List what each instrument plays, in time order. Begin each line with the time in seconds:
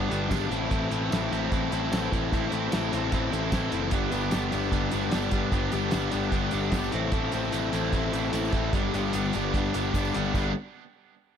Already playing: overdriven electric guitar G3 B3 D4, tonewheel organ G4 B4 A5
0.10 picked electric bass G1, overdriven electric guitar G2 D3 G3 B3 D4 G4, closed hi-hat
0.29 picked electric bass G#1, overdriven electric guitar G2 D3 G3 B3 D4 G4, kick, snare, closed hi-hat, tambourine
0.50 picked electric bass A1, overdriven electric guitar A2 E3 C4 E4 A4, tonewheel organ A4 C5 B5, closed hi-hat
0.70 picked electric bass A1, overdriven electric guitar A2 E3 C4 E4 A4, kick, closed hi-hat
0.91 picked electric bass A1, overdriven electric guitar A2 E3 C4 E4 A4, closed hi-hat
1.10 picked electric bass A1, overdriven electric guitar A2 E3 C4 E4 A4, snare, closed hi-hat, tambourine
1.30 picked electric bass A1, overdriven electric guitar A2 E3 C4 E4 A4, closed hi-hat
1.51 picked electric bass A1, overdriven electric guitar A2 E3 C4 E4 A4, kick, closed hi-hat
1.71 picked electric bass A1, overdriven electric guitar A2 E3 C4 E4 A4, closed hi-hat
1.91 picked electric bass A1, overdriven electric guitar A2 E3 C4 E4 A4, snare, closed hi-hat, tambourine
2.11 picked electric bass A1, overdriven electric guitar A2 E3 C4 E4 A4, kick, closed hi-hat
2.31 picked electric bass A1, overdriven electric guitar A2 E3 C4 E4 A4, kick, closed hi-hat
2.51 picked electric bass A1, overdriven electric guitar A2 E3 C4 E4 A4, closed hi-hat
2.72 picked electric bass A1, overdriven electric guitar A2 E3 C4 E4 A4, snare, closed hi-hat, tambourine
2.92 picked electric bass A1, overdriven electric guitar A2 E3 C4 E4 A4, closed hi-hat
3.12 picked electric bass A1, overdriven electric guitar A2 E3 C4 E4 A4, kick, closed hi-hat
3.32 picked electric bass A1, overdriven electric guitar A2 E3 C4 E4 A4, closed hi-hat
3.52 picked electric bass A1, overdriven electric guitar A2 E3 C4 E4 A4, kick, snare, closed hi-hat, tambourine
3.71 picked electric bass F#1, overdriven electric guitar A2 E3 C4 E4 A4, closed hi-hat
3.90 picked electric bass G1, overdriven electric guitar G2 D3 G3 B3 D4 G4, tonewheel organ G4 B4 A5, kick, closed hi-hat, tambourine
4.11 picked electric bass G1, overdriven electric guitar G2 D3 G3 B3 D4 G4, closed hi-hat, tambourine
4.23 tambourine
4.31 picked electric bass G1, overdriven electric guitar G2 D3 G3 B3 D4 G4, snare, closed hi-hat, tambourine
4.50 picked electric bass G1, overdriven electric guitar G2 D3 G3 B3 D4 G4, closed hi-hat, tambourine
4.71 picked electric bass G1, overdriven electric guitar G2 D3 G3 B3 D4 G4, kick, closed hi-hat, tambourine
4.91 picked electric bass G1, overdriven electric guitar G2 D3 G3 B3 D4 G4, closed hi-hat, tambourine
5.11 picked electric bass G1, overdriven electric guitar G2 D3 G3 B3 D4 G4, snare, closed hi-hat, tambourine
5.22 tambourine
5.31 picked electric bass G1, overdriven electric guitar G2 D3 G3 B3 D4 G4, kick, closed hi-hat
5.51 picked electric bass G1, overdriven electric guitar G2 D3 G3 B3 D4 G4, kick, closed hi-hat, tambourine
5.72 picked electric bass G1, overdriven electric guitar G2 D3 G3 B3 D4 G4, closed hi-hat, tambourine
5.91 picked electric bass G1, overdriven electric guitar G2 D3 G3 B3 D4 G4, snare, closed hi-hat, tambourine
6.11 picked electric bass G1, overdriven electric guitar G2 D3 G3 B3 D4 G4, closed hi-hat, tambourine
6.23 tambourine
6.31 picked electric bass G1, overdriven electric guitar G2 D3 G3 B3 D4 G4, kick, closed hi-hat, tambourine
6.51 picked electric bass G1, overdriven electric guitar G2 D3 G3 B3 D4 G4, closed hi-hat, tambourine
6.71 picked electric bass G1, overdriven electric guitar G2 D3 G3 B3 D4 G4, kick, snare, closed hi-hat, tambourine
6.84 tambourine
6.92 picked electric bass A1, overdriven electric guitar A2 E3 C4 E4 A4, tonewheel organ A4 C5 B5, closed hi-hat
7.12 picked electric bass A1, overdriven electric guitar A2 E3 C4 E4 A4, kick, closed hi-hat, tambourine
7.32 picked electric bass A1, overdriven electric guitar A2 E3 C4 E4 A4, closed hi-hat, tambourine
7.52 picked electric bass A1, overdriven electric guitar A2 E3 C4 E4 A4, closed hi-hat, tambourine
7.72 picked electric bass A1, overdriven electric guitar A2 E3 C4 E4 A4, closed hi-hat, tambourine
7.92 picked electric bass A1, overdriven electric guitar A2 E3 C4 E4 A4, kick, closed hi-hat, tambourine
8.12 picked electric bass A1, overdriven electric guitar A2 E3 C4 E4 A4, closed hi-hat, tambourine
8.25 tambourine
8.33 picked electric bass A1, overdriven electric guitar A2 E3 C4 E4 A4, closed hi-hat, tambourine
8.45 tambourine
8.53 picked electric bass A1, overdriven electric guitar A2 E3 C4 E4 A4, kick, closed hi-hat
8.70 picked electric bass G1, overdriven electric guitar G2, tonewheel organ G4 F#5, kick, closed hi-hat
8.74 overdriven electric guitar D3 G3 B3 D4 G4
8.94 picked electric bass G1, overdriven electric guitar G2 D3 G3 B3 D4 G4, closed hi-hat, tambourine
9.05 tambourine
9.13 picked electric bass G1, overdriven electric guitar G2 D3 G3 B3 D4 G4, closed hi-hat, tambourine
9.25 tambourine
9.33 picked electric bass G1, overdriven electric guitar G2 D3 G3 B3 D4 G4, closed hi-hat, tambourine
9.54 picked electric bass G1, overdriven electric guitar G2 D3 G3 B3 D4 G4, kick, closed hi-hat, tambourine
9.65 tambourine
9.74 picked electric bass G1, overdriven electric guitar G2 D3 G3 B3 D4 G4, closed hi-hat, tambourine
9.85 tambourine
9.94 picked electric bass G1, overdriven electric guitar G2 D3 G3 B3 D4 G4, kick, closed hi-hat, tambourine
10.05 tambourine
10.14 picked electric bass G1, overdriven electric guitar G2 D3 G3 B3 D4 G4, closed hi-hat
10.24 tambourine
10.33 picked electric bass G1, overdriven electric guitar G3 B3 D4 B4, tonewheel organ G3 F#4 B4, kick, crash, tambourine